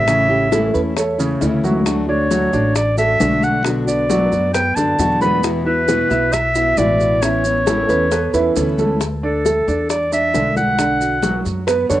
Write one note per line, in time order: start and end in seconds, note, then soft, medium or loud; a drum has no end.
0.00 0.68 A1 medium
0.00 0.71 E5 medium
0.06 0.44 C#3 medium
0.06 0.28 E3 medium
0.06 0.29 A3 medium
0.06 0.29 C#4 medium
0.06 0.45 C#4 medium
0.06 0.28 E4 medium
0.06 high bongo medium
0.06 high conga soft
0.06 maracas medium
0.29 0.51 A3 soft
0.29 0.51 C#4 soft
0.29 0.51 E4 soft
0.29 0.51 G4 medium
0.29 high conga soft
0.51 0.73 E3 medium
0.51 0.89 E3 medium
0.51 0.74 A3 medium
0.51 0.73 C#4 medium
0.51 0.72 E4 medium
0.51 0.89 E4 medium
0.51 0.75 A4 medium
0.51 high bongo medium
0.51 high conga medium
0.51 maracas medium
0.73 1.38 E2 medium
0.73 0.96 A3 soft
0.73 0.96 C#4 soft
0.73 0.96 E4 soft
0.73 0.80 B4 medium
0.73 high bongo soft
0.73 high conga soft
0.73 maracas soft
0.96 1.15 A3 medium
0.96 1.16 A4 medium
0.96 1.43 C#5 medium
0.96 muted steel-string acoustic guitar stroke medium
0.96 high bongo medium
0.96 high conga soft
0.96 maracas medium
1.18 1.56 C#3 medium
1.18 1.40 A3 soft
1.18 1.41 C#4 soft
1.18 1.56 C#4 medium
1.18 1.40 E4 soft
1.18 high bongo soft
1.18 high conga soft
1.18 maracas medium
1.41 2.47 D2 medium
1.41 1.85 E3 medium
1.41 1.85 A3 medium
1.41 1.86 C#4 medium
1.41 1.82 E4 medium
1.41 1.86 E4 medium
1.41 high bongo soft
1.41 low bongo medium
1.41 high conga soft
1.41 maracas medium
1.64 2.01 F#3 medium
1.64 2.01 F#4 medium
1.64 high bongo soft
1.64 high conga medium
1.64 maracas soft
1.82 2.08 D3 medium
1.82 2.08 A3 medium
1.82 1.94 D4 medium
1.82 high bongo medium
1.82 high conga soft
1.82 maracas medium
1.86 2.08 D4 medium
1.86 2.07 F#4 medium
2.08 2.30 A3 soft
2.08 2.27 D4 medium
2.08 2.30 D4 soft
2.08 2.30 F#4 soft
2.08 2.72 C#5 medium
2.08 2.27 D5 medium
2.08 high conga soft
2.30 2.52 D3 medium
2.30 2.49 F#3 medium
2.30 2.53 A3 medium
2.30 2.53 D4 medium
2.30 2.50 F#4 medium
2.30 2.52 F#4 medium
2.30 high bongo medium
2.30 high conga medium
2.30 maracas medium
2.53 3.16 A1 medium
2.53 2.74 A3 soft
2.53 2.90 D4 medium
2.53 2.75 D4 soft
2.53 2.75 F#4 soft
2.53 2.90 D5 medium
2.53 high bongo soft
2.53 high conga soft
2.53 maracas soft
2.75 2.97 D5 medium
2.75 muted steel-string acoustic guitar stroke medium
2.75 high bongo medium
2.75 high conga soft
2.75 maracas medium
2.97 3.16 A3 medium
2.97 3.19 A3 soft
2.97 3.20 D4 soft
2.97 3.19 F#4 soft
2.97 3.16 A4 medium
2.97 3.45 E5 medium
2.97 high bongo soft
2.97 high conga soft
2.97 maracas medium
3.20 4.26 B1 medium
3.20 3.64 D3 medium
3.20 3.57 D3 medium
3.20 3.64 A3 medium
3.20 3.57 D4 medium
3.20 3.64 D4 medium
3.20 3.64 F#4 medium
3.20 high bongo soft
3.20 low bongo medium
3.20 high conga medium
3.20 maracas medium
3.42 3.66 F#5 medium
3.42 high bongo soft
3.42 maracas soft
3.64 3.86 B2 medium
3.64 4.02 D3 medium
3.64 3.86 F#3 medium
3.64 3.86 B3 medium
3.64 3.87 D4 medium
3.64 4.02 D4 medium
3.64 3.86 F#4 medium
3.64 high bongo medium
3.64 high conga soft
3.64 maracas medium
3.87 4.09 B3 soft
3.87 4.09 D4 soft
3.87 4.09 F#4 soft
3.87 4.50 D5 medium
3.87 high conga soft
3.87 maracas medium
4.09 4.31 B2 medium
4.09 4.46 F#3 medium
4.09 4.31 F#3 medium
4.09 4.31 B3 medium
4.09 4.32 D4 medium
4.09 4.47 F#4 medium
4.09 4.31 F#4 medium
4.09 high bongo medium
4.09 high conga medium
4.09 maracas medium
4.32 4.74 F#2 medium
4.32 4.53 B3 soft
4.32 4.53 D4 soft
4.32 4.53 F#4 soft
4.32 high bongo soft
4.32 high conga soft
4.32 maracas soft
4.54 4.73 B3 medium
4.54 4.73 B4 medium
4.54 4.77 G5 medium
4.54 muted steel-string acoustic guitar stroke medium
4.54 high bongo medium
4.54 high conga soft
4.54 maracas medium
4.76 4.97 F#2 medium
4.76 5.13 D3 medium
4.76 4.98 B3 soft
4.76 5.14 D4 medium
4.76 4.99 D4 soft
4.76 4.98 F#4 soft
4.76 5.21 A5 medium
4.76 high bongo soft
4.76 high conga soft
4.76 maracas medium
4.99 6.04 E2 medium
4.99 5.42 B2 medium
4.99 5.43 F#3 medium
4.99 5.43 B3 medium
4.99 5.43 D4 medium
4.99 5.43 F#4 medium
4.99 high bongo soft
4.99 low bongo medium
4.99 high conga soft
4.99 maracas medium
5.21 5.58 B3 medium
5.21 5.58 B4 medium
5.21 5.42 B5 medium
5.21 high bongo soft
5.21 high conga medium
5.21 maracas soft
5.43 5.65 B2 medium
5.43 5.65 E3 medium
5.43 5.65 B3 medium
5.43 5.65 E4 medium
5.43 5.64 F#4 medium
5.43 high bongo medium
5.43 maracas medium
5.65 5.87 B3 soft
5.65 5.84 E4 medium
5.65 5.88 E4 soft
5.65 5.87 F#4 soft
5.65 6.35 B4 medium
5.65 5.85 E5 medium
5.65 high conga soft
5.88 6.10 B2 medium
5.88 6.10 E3 medium
5.88 6.10 B3 medium
5.88 6.07 B3 medium
5.88 6.10 E4 medium
5.88 6.09 F#4 medium
5.88 6.07 B4 medium
5.88 high bongo medium
5.88 high conga medium
5.88 maracas medium
6.10 6.73 B1 medium
6.10 6.33 B3 soft
6.10 6.47 E4 medium
6.10 6.33 E4 soft
6.10 6.32 F#4 soft
6.10 6.48 E5 medium
6.10 high bongo soft
6.10 high conga soft
6.10 maracas soft
6.33 6.79 E5 loud
6.33 muted steel-string acoustic guitar stroke medium
6.33 high bongo medium
6.33 high conga soft
6.33 maracas medium
6.55 6.78 B3 soft
6.55 6.74 E4 medium
6.55 6.77 E4 soft
6.55 6.77 F#4 soft
6.55 6.74 E5 medium
6.55 high bongo soft
6.55 high conga soft
6.55 maracas medium
6.77 7.83 A1 medium
6.77 7.22 B2 medium
6.77 7.14 E3 medium
6.77 7.21 E3 medium
6.77 7.22 B3 medium
6.77 7.15 E4 medium
6.77 7.22 E4 medium
6.77 7.22 F#4 medium
6.77 7.24 D5 medium
6.77 high bongo soft
6.77 low bongo medium
6.77 high conga medium
6.77 maracas medium
7.00 high bongo soft
7.00 maracas soft
7.22 7.44 E3 medium
7.22 7.59 E3 medium
7.22 7.44 B3 medium
7.22 7.44 C#4 medium
7.22 7.59 E4 medium
7.22 7.44 E4 medium
7.22 8.56 C#5 medium
7.22 high bongo medium
7.22 high conga soft
7.22 maracas medium
7.45 7.67 B3 soft
7.45 7.67 C#4 soft
7.45 7.66 E4 soft
7.45 high conga soft
7.45 maracas soft
7.67 7.88 E3 medium
7.67 8.04 A3 medium
7.67 7.89 B3 medium
7.67 7.88 C#4 medium
7.67 7.87 E4 medium
7.67 7.89 A4 medium
7.67 8.04 A4 medium
7.67 high bongo medium
7.67 high conga medium
7.67 maracas medium
7.89 8.31 E2 medium
7.89 8.11 B3 soft
7.89 8.11 C#4 soft
7.89 8.10 E4 soft
7.89 8.11 B4 loud
7.89 high bongo soft
7.89 high conga soft
7.89 maracas soft
8.11 8.30 B3 medium
8.11 8.33 A4 medium
8.11 8.30 B4 medium
8.11 muted steel-string acoustic guitar stroke medium
8.11 high bongo medium
8.11 high conga soft
8.11 maracas medium
8.33 8.54 E2 medium
8.33 8.71 E3 medium
8.33 8.55 B3 soft
8.33 8.56 C#4 soft
8.33 8.55 E4 soft
8.33 8.71 E4 medium
8.33 8.56 B4 medium
8.33 high bongo soft
8.33 high conga soft
8.33 maracas medium
8.56 9.61 D2 medium
8.56 9.00 E3 medium
8.56 9.00 B3 medium
8.56 9.00 C#4 medium
8.56 9.00 E4 medium
8.56 8.98 A4 medium
8.56 high bongo soft
8.56 low bongo medium
8.56 high conga soft
8.56 maracas medium
8.78 8.97 A3 medium
8.78 8.97 A4 medium
8.78 high bongo soft
8.78 high conga medium
8.78 maracas soft
9.01 high bongo medium
9.01 high conga soft
9.01 maracas medium
9.23 9.41 D4 medium
9.23 9.87 A4 medium
9.23 9.42 D5 medium
9.23 high conga soft
9.45 9.64 A3 medium
9.45 9.64 A4 medium
9.45 high bongo medium
9.45 high conga soft
9.45 maracas medium
9.68 10.30 E2 medium
9.68 10.04 D4 medium
9.68 10.04 D5 medium
9.68 high bongo soft
9.68 high conga soft
9.68 maracas soft
9.90 10.11 D5 medium
9.90 high bongo medium
9.90 high conga soft
9.90 maracas medium
10.12 10.30 D4 medium
10.12 10.31 D5 medium
10.12 10.54 E5 medium
10.12 high bongo soft
10.12 high conga soft
10.12 maracas medium
10.34 11.40 B1 medium
10.34 10.71 D3 medium
10.34 10.71 D4 medium
10.34 high bongo soft
10.34 low bongo medium
10.34 high conga medium
10.34 maracas medium
10.56 11.42 F#5 medium
10.56 high bongo soft
10.56 high conga medium
10.56 maracas soft
10.78 11.15 D3 medium
10.78 11.16 D4 medium
10.78 high bongo medium
10.78 high conga soft
10.78 maracas medium
11.01 11.70 F#4 medium
11.01 high conga soft
11.01 maracas soft
11.23 11.60 F#3 medium
11.23 11.60 F#4 medium
11.23 high bongo medium
11.23 high conga medium
11.23 maracas medium
11.45 11.87 F#2 medium
11.45 high bongo soft
11.45 high conga soft
11.45 maracas soft
11.67 11.86 B3 medium
11.67 11.89 B4 medium
11.67 11.86 B4 medium
11.67 high bongo medium
11.67 high conga soft
11.67 maracas medium
11.90 12.00 F#2 medium
11.90 12.00 D3 medium
11.90 12.00 D4 medium
11.90 12.00 C#5 medium
11.90 high bongo soft
11.90 high conga soft
11.90 maracas medium